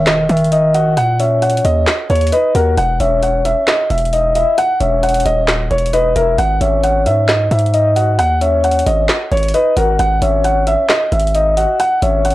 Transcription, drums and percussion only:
0.07 snare loud
0.07 clap loud
0.07 closed hi-hat medium
0.29 closed hi-hat medium
0.37 closed hi-hat medium
0.44 closed hi-hat medium
0.52 closed hi-hat medium
0.74 closed hi-hat medium
0.97 closed hi-hat medium
1.20 closed hi-hat medium
1.42 closed hi-hat medium
1.50 closed hi-hat medium
1.57 closed hi-hat medium
1.65 closed hi-hat medium
1.87 snare loud
1.87 clap loud
1.87 closed hi-hat medium
2.10 closed hi-hat soft
2.15 closed hi-hat medium
2.21 closed hi-hat medium
2.27 closed hi-hat medium
2.32 closed hi-hat medium
2.55 closed hi-hat medium
2.77 closed hi-hat medium
3.00 closed hi-hat medium
3.23 closed hi-hat medium
3.45 closed hi-hat medium
3.67 snare loud
3.67 clap loud
3.67 closed hi-hat medium
3.90 closed hi-hat medium
3.98 closed hi-hat medium
4.05 closed hi-hat medium
4.13 closed hi-hat medium
4.35 closed hi-hat medium
4.58 closed hi-hat medium
4.80 closed hi-hat medium
5.03 closed hi-hat medium
5.09 closed hi-hat medium
5.14 closed hi-hat medium
5.20 closed hi-hat medium
5.26 closed hi-hat medium
5.48 snare loud
5.48 clap loud
5.48 closed hi-hat medium
5.71 closed hi-hat soft
5.78 closed hi-hat medium
5.86 closed hi-hat medium
5.93 closed hi-hat medium
6.16 closed hi-hat medium
6.38 closed hi-hat medium
6.61 closed hi-hat medium
6.83 closed hi-hat medium
7.06 closed hi-hat medium
7.28 snare loud
7.28 clap loud
7.28 closed hi-hat medium
7.51 closed hi-hat medium
7.59 closed hi-hat medium
7.66 closed hi-hat medium
7.74 closed hi-hat medium
7.96 closed hi-hat medium
8.19 closed hi-hat medium
8.41 closed hi-hat medium
8.64 closed hi-hat medium
8.71 closed hi-hat medium
8.79 closed hi-hat medium
8.86 closed hi-hat medium
9.09 snare loud
9.09 clap loud
9.09 closed hi-hat medium
9.32 closed hi-hat soft
9.37 closed hi-hat medium
9.43 closed hi-hat medium
9.48 closed hi-hat medium
9.54 closed hi-hat medium
9.77 closed hi-hat medium
9.99 closed hi-hat medium
10.22 closed hi-hat medium
10.44 closed hi-hat medium
10.67 closed hi-hat medium
10.89 snare loud
10.89 clap loud
10.89 closed hi-hat medium
11.12 closed hi-hat medium
11.20 closed hi-hat medium
11.27 closed hi-hat medium
11.35 closed hi-hat medium
11.57 closed hi-hat medium
11.80 closed hi-hat medium
12.02 closed hi-hat medium
12.25 closed hi-hat medium
12.30 closed hi-hat medium

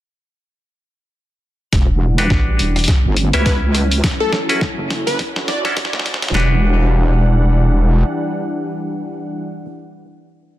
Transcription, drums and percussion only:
1.73 kick medium
1.73 snare soft
1.73 closed hi-hat medium
2.18 closed hi-hat medium
2.30 kick medium
2.30 snare medium
2.59 closed hi-hat soft
2.76 cross-stick soft
2.76 closed hi-hat soft
2.79 closed hi-hat soft
2.84 closed hi-hat soft
2.88 kick medium
2.88 snare medium
2.88 closed hi-hat medium
3.17 closed hi-hat soft
3.33 closed hi-hat medium
3.46 kick medium
3.46 snare medium
3.46 closed hi-hat medium
3.75 cross-stick soft
3.75 closed hi-hat medium
3.91 closed hi-hat medium
4.04 kick loud
4.04 snare medium
4.04 closed hi-hat medium
4.33 snare medium
4.49 closed hi-hat medium
4.61 kick medium
4.61 snare medium
4.90 snare medium
4.90 closed hi-hat soft
5.07 closed hi-hat medium
5.19 kick loud
5.19 snare medium
5.19 closed hi-hat medium
5.36 snare medium
5.48 snare loud
5.48 closed hi-hat soft
5.65 snare medium
5.65 closed hi-hat medium
5.77 kick loud
5.77 snare loud
5.77 closed hi-hat medium
5.85 snare medium
5.93 snare medium
5.99 snare medium
6.06 snare loud
6.06 closed hi-hat medium
6.14 snare medium
6.22 snare loud
6.22 closed hi-hat medium
6.28 snare loud
6.35 snare loud
6.35 clap medium

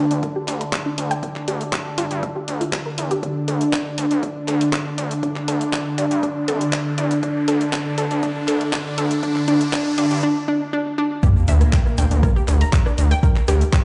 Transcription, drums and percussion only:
0.11 closed hi-hat soft
0.23 kick loud
0.23 closed hi-hat soft
0.48 clap soft
0.48 open hi-hat loud
0.61 open hi-hat medium
0.73 kick loud
0.73 clap loud
0.73 closed hi-hat soft
0.98 open hi-hat loud
1.11 closed hi-hat soft
1.23 kick loud
1.23 closed hi-hat soft
1.36 clap soft
1.48 open hi-hat loud
1.61 closed hi-hat soft
1.73 kick loud
1.73 clap loud
1.73 closed hi-hat soft
1.98 open hi-hat loud
2.11 closed hi-hat soft
2.23 kick loud
2.23 closed hi-hat soft
2.48 open hi-hat loud
2.61 closed hi-hat soft
2.73 kick loud
2.73 clap loud
2.73 closed hi-hat soft
2.98 open hi-hat loud
3.11 closed hi-hat soft
3.23 kick loud
3.23 closed hi-hat soft
3.48 open hi-hat loud
3.61 closed hi-hat soft
3.73 kick loud
3.73 clap loud
3.73 closed hi-hat soft
3.98 open hi-hat loud
4.11 closed hi-hat soft
4.23 kick loud
4.23 closed hi-hat soft
4.48 clap soft
4.48 open hi-hat loud
4.61 open hi-hat medium
4.73 kick loud
4.73 clap loud
4.73 closed hi-hat soft
4.98 open hi-hat loud
5.11 closed hi-hat soft
5.23 kick loud
5.23 closed hi-hat soft
5.36 clap soft
5.48 open hi-hat loud
5.61 closed hi-hat soft
5.73 kick loud
5.73 clap loud
5.73 closed hi-hat soft
5.98 open hi-hat loud
6.11 closed hi-hat soft
6.23 kick loud
6.23 closed hi-hat soft
6.48 open hi-hat loud
6.61 closed hi-hat soft
6.73 kick loud
6.73 clap loud
6.73 closed hi-hat soft
6.98 open hi-hat loud
7.11 closed hi-hat soft
7.23 kick loud
7.23 closed hi-hat soft
7.48 open hi-hat loud
7.61 closed hi-hat soft
7.73 kick loud
7.73 clap loud
7.73 closed hi-hat soft
7.98 open hi-hat loud
8.11 closed hi-hat soft
8.23 kick loud
8.23 closed hi-hat soft
8.48 clap soft
8.48 open hi-hat loud
8.61 open hi-hat medium
8.73 kick loud
8.73 clap loud
8.73 closed hi-hat soft
8.98 open hi-hat loud
9.11 closed hi-hat soft
9.23 kick loud
9.23 closed hi-hat soft
9.36 clap soft
9.48 open hi-hat loud
9.61 closed hi-hat soft
9.73 kick loud
9.73 clap loud
9.73 closed hi-hat soft
9.98 open hi-hat loud
10.11 closed hi-hat soft
11.23 kick loud
11.23 cross-stick medium
11.23 closed hi-hat soft
11.23 shaker soft
11.37 shaker soft
11.48 open hi-hat loud
11.48 shaker medium
11.61 cross-stick medium
11.61 closed hi-hat soft
11.61 shaker soft
11.73 kick loud
11.73 clap loud
11.73 closed hi-hat soft
11.73 shaker medium
11.86 cross-stick soft
11.86 shaker soft
11.98 open hi-hat loud
11.98 shaker loud
12.11 closed hi-hat soft
12.11 shaker soft
12.23 kick loud
12.23 cross-stick medium
12.23 closed hi-hat soft
12.23 shaker medium
12.36 shaker soft
12.48 cross-stick soft
12.48 clap soft
12.48 open hi-hat loud
12.48 shaker medium
12.61 open hi-hat medium
12.61 shaker soft
12.73 kick loud
12.73 clap loud
12.73 closed hi-hat soft
12.73 shaker medium
12.86 cross-stick medium
12.86 shaker soft
12.98 open hi-hat loud
12.98 shaker medium
13.11 cross-stick soft
13.11 closed hi-hat soft
13.11 shaker soft
13.23 kick loud
13.23 closed hi-hat soft
13.23 shaker soft
13.36 clap soft
13.36 shaker soft
13.48 cross-stick medium
13.48 open hi-hat loud
13.48 shaker loud
13.61 closed hi-hat soft
13.61 shaker soft
13.73 kick loud
13.73 cross-stick soft
13.73 clap loud
13.73 closed hi-hat soft
13.73 shaker medium

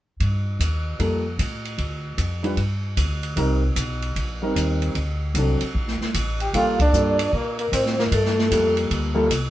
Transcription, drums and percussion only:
0.20 kick soft
0.20 ride soft
0.60 kick soft
0.60 hi-hat pedal soft
0.60 ride medium
0.99 kick soft
0.99 ride soft
1.39 kick soft
1.39 hi-hat pedal soft
1.39 ride soft
1.65 ride soft
1.78 kick soft
1.78 ride soft
2.18 kick soft
2.18 hi-hat pedal soft
2.18 ride soft
2.44 ride soft
2.57 kick soft
2.57 ride soft
2.97 kick soft
2.97 hi-hat pedal medium
2.97 ride medium
3.23 ride soft
3.36 kick soft
3.36 ride soft
3.76 kick soft
3.76 hi-hat pedal medium
3.76 ride medium
4.02 ride soft
4.16 kick soft
4.16 ride soft
4.56 kick soft
4.56 hi-hat pedal medium
4.56 ride medium
4.82 ride soft
4.95 kick soft
4.95 ride soft
5.35 kick soft
5.35 hi-hat pedal soft
5.35 ride medium
5.61 ride soft
5.75 kick soft
5.88 snare soft
6.01 snare soft
6.14 kick soft
6.14 hi-hat pedal soft
6.14 ride medium
6.40 ride soft
6.54 kick soft
6.54 ride medium
6.80 kick medium
6.80 ride medium
6.94 hi-hat pedal medium
7.19 ride medium
7.33 kick soft
7.59 ride soft
7.72 kick soft
7.72 hi-hat pedal medium
7.72 ride medium
7.86 snare soft
7.99 snare soft
8.12 kick soft
8.12 ride medium
8.25 snare soft
8.39 snare soft
8.51 kick soft
8.51 hi-hat pedal medium
8.51 ride medium
8.77 ride soft
8.90 kick soft
8.90 ride soft
9.30 kick soft
9.30 hi-hat pedal medium
9.30 ride medium

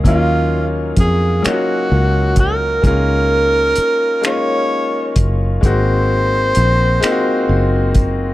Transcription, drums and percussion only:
0.05 kick medium
0.05 closed hi-hat medium
0.97 kick medium
0.97 closed hi-hat medium
1.44 finger snap medium
1.44 closed hi-hat medium
2.36 kick medium
2.36 closed hi-hat medium
2.84 kick loud
2.84 closed hi-hat medium
3.76 closed hi-hat medium
4.24 finger snap medium
4.24 closed hi-hat medium
5.16 kick medium
5.16 closed hi-hat medium
5.63 kick loud
5.63 closed hi-hat medium
6.55 closed hi-hat medium
7.03 finger snap loud
7.03 closed hi-hat medium
7.95 kick medium
7.95 closed hi-hat medium

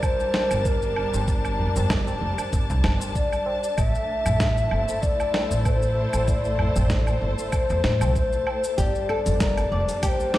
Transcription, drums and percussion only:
0.03 kick medium
0.03 low woodblock medium
0.03 shaker soft
0.20 tabla tin medium
0.20 shaker soft
0.34 snare medium
0.34 tabla na medium
0.51 low woodblock medium
0.51 shaker medium
0.65 kick medium
0.65 shaker soft
0.82 shaker soft
0.96 low woodblock medium
1.14 tabla na medium
1.14 shaker medium
1.28 kick medium
1.28 shaker soft
1.45 low woodblock medium
1.45 shaker soft
1.59 tabla ge medium
1.76 tabla na medium
1.76 tabla ge medium
1.76 shaker medium
1.90 kick loud
1.90 snare medium
1.90 low woodblock medium
1.90 shaker soft
2.07 tabla na medium
2.07 shaker soft
2.21 tabla tin soft
2.38 tabla na soft
2.38 tabla tin medium
2.38 low woodblock medium
2.38 shaker medium
2.53 kick loud
2.53 shaker medium
2.70 tabla tin medium
2.70 shaker soft
2.84 snare medium
2.84 tabla tin medium
2.84 low woodblock medium
3.00 tabla na medium
3.00 shaker medium
3.15 kick medium
3.15 shaker medium
3.33 low woodblock medium
3.33 shaker soft
3.46 tabla na medium
3.63 shaker medium
3.78 kick loud
3.78 low woodblock medium
3.78 shaker medium
3.95 shaker soft
4.26 tabla ge medium
4.26 low woodblock medium
4.26 shaker medium
4.40 kick loud
4.40 snare medium
4.40 shaker soft
4.57 shaker soft
4.71 tabla tin soft
4.71 low woodblock medium
4.88 tabla tin medium
4.88 shaker medium
5.03 kick loud
5.03 shaker medium
5.20 tabla tin medium
5.20 low woodblock medium
5.20 shaker soft
5.34 snare medium
5.34 tabla na medium
5.51 shaker medium
5.65 kick loud
5.65 low woodblock medium
5.65 shaker medium
5.82 shaker soft
6.13 tabla na medium
6.13 low woodblock medium
6.13 shaker medium
6.28 kick loud
6.28 shaker medium
6.45 shaker soft
6.59 tabla ge medium
6.59 low woodblock medium
6.76 tabla na medium
6.76 tabla ge medium
6.76 shaker medium
6.90 kick loud
6.90 snare medium
6.90 shaker soft
7.07 tabla na medium
7.07 low woodblock medium
7.07 shaker soft
7.22 tabla tin soft
7.38 tabla na soft
7.38 tabla tin medium
7.38 shaker medium
7.52 kick loud
7.52 low woodblock medium
7.52 shaker medium
7.70 tabla tin medium
7.70 shaker soft
7.84 snare medium
7.84 tabla tin medium
8.01 tabla na medium
8.01 low woodblock medium
8.01 shaker medium
8.16 kick loud
8.16 shaker medium
8.32 shaker soft
8.47 tabla na medium
8.47 low woodblock medium
8.64 shaker medium
8.78 kick loud
8.78 closed hi-hat medium
8.78 shaker soft
8.95 shaker soft
9.09 low woodblock medium
9.26 closed hi-hat soft
9.26 tabla ge medium
9.26 shaker medium
9.40 kick loud
9.40 snare medium
9.40 closed hi-hat medium
9.40 shaker soft
9.57 closed hi-hat soft
9.57 low woodblock medium
9.57 shaker soft
9.72 tabla tin soft
9.89 closed hi-hat soft
9.89 tabla tin medium
9.89 shaker medium
10.03 kick loud
10.03 closed hi-hat medium
10.03 low woodblock medium
10.03 shaker medium
10.20 tabla tin medium
10.20 shaker soft
10.33 snare medium
10.33 tabla na medium

